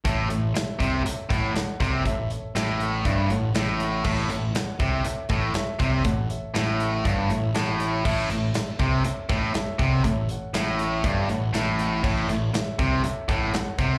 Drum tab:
CC |--------|--------|x-------|--------|
HH |xxxxxxxx|xxxxxxxx|-xxxxxxx|xxxxxxxx|
SD |--o---oo|--o---o-|--o---o-|--o---o-|
BD |o--o-o-o|o---o---|o--o-o-o|o---o---|

CC |x-------|--------|x-------|
HH |-xxxxxxx|xxxxxxxx|-xxxxxxx|
SD |--o---o-|--o---o-|--o---o-|
BD |o--o-o-o|o---o---|o--o-o-o|